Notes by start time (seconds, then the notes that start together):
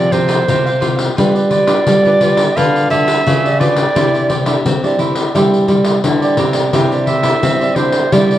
Already playing: F3 G3 C4 F4 G4 C5 D5 F5
0.12 C3 F4 G4 C5 F5, pandeiro
0.28 F4 G4 C5 F5, pandeiro
0.48 C3 G3 C4 F4, pandeiro
0.66 G4 C5 F5, pandeiro
0.80 G3 C4 F4 G4 C5 F5, pandeiro
0.97 G4 C5 F5, pandeiro
1.16 G3 D4 F4 G4 B4 D5, pandeiro
1.35 G4 B4 D5, pandeiro
1.50 F4 G4 B4 D5, pandeiro
1.67 D4 F4 G4 B4 D5, pandeiro
1.87 D3 G3, pandeiro
2.05 D4 F4 G4 B4 D5, pandeiro
2.20 D4 F4 G4 B4 D5, pandeiro
2.37 pandeiro
2.56 D3 G3 D4 F4 G4 B4 D5 F5, pandeiro
2.76 pandeiro
2.90 D3 F4 G4 B4 D5 E5, pandeiro
3.06 F4 G4 B4 D5, pandeiro
3.26 C#3 D4 F4 B4, pandeiro
3.44 G4 B4 D5, pandeiro
3.59 D4 F4 G4 B4 D5, pandeiro
3.76 G4 B4 D5, pandeiro
3.95 C3 G3 D4 E4 G4 C5 D5, pandeiro
4.13 G4 C5 D5, pandeiro
4.29 E4 G4 C5 D5, pandeiro
4.46 G3 D4 E4 G4 C5 D5, pandeiro
4.65 G3 C4, pandeiro
4.83 G3 D4 E4 G4 C5 D5, pandeiro
4.98 G3 D4 E4 G4 C5 D5, pandeiro
5.15 pandeiro
5.34 C3 G3 D4 E4 G4 C5 D5, pandeiro
5.54 pandeiro
5.68 G3 E4 G4 C5 D5, pandeiro
5.84 E4 G4 C5 D5, pandeiro
6.04 D3 G3 D4 E4, pandeiro
6.22 G4 C5 D5, pandeiro
6.37 C3 E4 G4 C5 D5, pandeiro
6.53 G4 C5 D5, pandeiro
6.73 C3 G3 D4 E4 G4 C5 D5, pandeiro
6.92 G4 C5 D5, pandeiro
7.06 E4 G4 C5 D5 E5, pandeiro
7.23 G3 D4 E4 G4 C5 D5, pandeiro
7.43 G3 C4, pandeiro
7.61 G4 C5 D5, pandeiro
7.76 G3 D4 E4 G4 C5 D5, pandeiro
7.93 pandeiro
8.12 C3 G3 D4 E4 G4 C5 D5, pandeiro
8.31 pandeiro